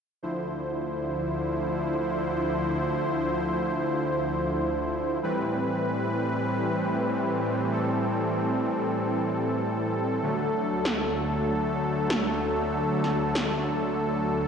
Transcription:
0.23 5.19 D2 medium
0.23 5.19 D3 medium
0.23 5.19 F3 medium
0.23 5.19 E4 medium
0.23 5.19 C5 medium
5.23 10.19 A2 medium
5.23 10.19 E3 medium
5.23 10.19 G3 medium
5.23 10.19 C4 medium
5.23 7.70 B4 medium
7.72 14.48 A4 medium
10.23 14.48 D2 medium
10.23 14.48 D3 medium
10.23 14.48 F#3 medium
10.23 14.48 A3 medium
10.85 snare loud
12.10 snare loud
13.04 snare soft
13.35 snare loud

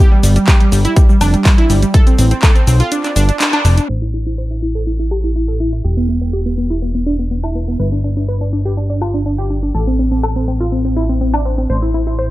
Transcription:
0.12 0.19 G3 medium
0.23 0.38 G1 loud
0.23 0.31 G3 medium
0.23 open hi-hat loud
0.23 shaker medium
0.36 0.43 G3 medium
0.36 closed hi-hat medium
0.36 shaker soft
0.47 0.55 G4 loud
0.47 kick loud
0.47 clap loud
0.47 closed hi-hat medium
0.47 shaker soft
0.60 0.67 G3 medium
0.60 closed hi-hat soft
0.72 0.87 G1 loud
0.72 0.80 G3 medium
0.72 open hi-hat medium
0.72 shaker medium
0.85 0.92 E4 medium
0.85 closed hi-hat medium
0.85 shaker soft
0.96 1.04 G3 medium
0.96 kick loud
0.96 closed hi-hat medium
0.96 shaker soft
1.09 1.16 G3 medium
1.09 shaker soft
1.21 1.36 F1 loud
1.21 1.29 D4 medium
1.21 open hi-hat loud
1.21 high woodblock medium
1.21 shaker medium
1.34 1.41 G3 medium
1.34 closed hi-hat medium
1.34 shaker soft
1.45 1.53 G3 medium
1.45 kick loud
1.45 clap loud
1.45 closed hi-hat medium
1.45 shaker soft
1.58 1.65 E4 loud
1.58 closed hi-hat soft
1.70 1.85 G1 medium
1.70 1.77 G3 medium
1.70 open hi-hat medium
1.70 shaker medium
1.82 1.89 G3 medium
1.82 closed hi-hat medium
1.82 shaker soft
1.94 2.02 A4 loud
1.94 kick loud
1.94 closed hi-hat medium
1.94 shaker soft
2.07 2.14 C4 medium
2.07 closed hi-hat soft
2.07 shaker soft
2.19 2.34 A1 loud
2.19 2.26 C4 medium
2.19 open hi-hat loud
2.19 shaker medium
2.31 2.38 C4 medium
2.31 closed hi-hat medium
2.31 shaker soft
2.43 2.50 A4 loud
2.43 kick loud
2.43 clap loud
2.43 closed hi-hat medium
2.43 high woodblock medium
2.43 shaker soft
2.56 2.63 C4 medium
2.56 closed hi-hat soft
2.56 shaker soft
2.67 2.82 B1 loud
2.67 2.75 C4 medium
2.67 open hi-hat medium
2.67 shaker medium
2.80 2.87 F4 medium
2.80 closed hi-hat medium
2.80 shaker soft
2.92 2.99 D4 medium
2.92 closed hi-hat medium
2.92 shaker soft
3.04 3.11 D4 medium
3.04 clap soft
3.04 closed hi-hat soft
3.04 shaker soft
3.16 3.31 G1 loud
3.16 3.24 D4 medium
3.16 open hi-hat loud
3.16 shaker medium
3.29 3.36 D4 medium
3.29 closed hi-hat medium
3.29 shaker soft
3.40 3.48 D4 medium
3.40 clap loud
3.40 closed hi-hat medium
3.40 shaker soft
3.53 3.60 D4 loud
3.53 closed hi-hat soft
3.53 high woodblock medium
3.65 3.80 F1 medium
3.65 3.72 D4 medium
3.65 open hi-hat medium
3.65 shaker medium
3.78 3.85 D4 medium
3.78 closed hi-hat medium
3.78 shaker soft
3.89 5.82 A1 medium
3.89 3.97 C5 medium
4.02 4.09 E4 medium
4.14 4.21 E4 medium
4.26 4.33 E4 medium
4.38 4.46 C5 medium
4.51 4.58 E4 medium
4.62 4.70 E4 medium
4.75 4.82 A4 medium
4.87 4.94 E4 medium
4.99 5.06 E4 medium
5.11 5.19 G4 loud
5.11 high woodblock medium
5.24 5.31 E4 medium
5.36 5.43 E4 medium
5.48 5.55 A4 medium
5.60 5.68 E4 medium
5.73 5.80 E4 medium
5.84 7.77 E1 medium
5.84 5.92 G4 medium
5.97 6.04 B3 medium
6.09 6.16 B3 medium
6.21 6.28 B3 medium
6.33 6.41 G4 medium
6.46 6.53 B3 medium
6.58 6.65 B3 medium
6.70 6.77 E4 medium
6.82 6.90 B3 medium
6.95 7.02 B3 medium
7.06 7.14 D4 medium
7.19 7.26 B3 medium
7.31 7.38 B3 medium
7.43 7.50 E4 medium
7.43 high woodblock medium
7.55 7.63 B3 medium
7.68 7.75 B3 medium
7.80 9.72 G1 medium
7.80 7.87 B4 medium
7.92 7.99 D4 medium
8.04 8.12 D4 medium
8.17 8.24 D4 medium
8.28 8.36 B4 medium
8.41 8.48 D4 medium
8.53 8.60 D4 medium
8.65 8.72 G4 medium
8.77 8.85 D4 medium
8.90 8.97 D4 medium
9.01 9.09 F4 loud
9.01 high woodblock medium
9.14 9.21 D4 medium
9.26 9.33 D4 medium
9.38 9.45 G4 loud
9.50 9.58 D4 medium
9.63 9.70 D4 medium
9.74 11.67 A1 medium
9.74 9.82 A4 medium
9.87 9.94 C4 medium
9.99 10.07 C4 medium
10.12 10.19 C4 medium
10.23 10.31 A4 loud
10.23 high woodblock medium
10.36 10.43 C4 medium
10.48 10.55 C4 medium
10.60 10.67 F4 medium
10.72 10.80 C4 medium
10.85 10.92 C4 medium
10.97 11.04 E4 medium
11.09 11.16 C4 medium
11.21 11.28 C4 medium
11.34 11.41 D4 medium
11.34 high woodblock medium
11.45 11.53 C4 medium
11.58 11.65 C4 medium
11.70 12.31 A1 medium
11.70 11.77 C5 loud
11.82 11.89 E4 medium
11.94 12.02 E4 medium
12.07 12.14 E4 medium
12.19 12.26 C5 medium

